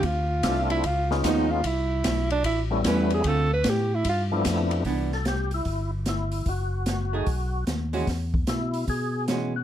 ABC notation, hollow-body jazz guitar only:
X:1
M:4/4
L:1/8
Q:"Swing" 1/4=149
K:C
V:1 name="Hollow-body jazz guitar"
z6 [F,_C_E] z | z6 [G,^CE] z | [D,A,CF] z6 z | [E,B,D] z6 z |
z3 [A,_E_A] z3 [=E,^G,^C^F] | z6 [E,^G,^C^F] z |]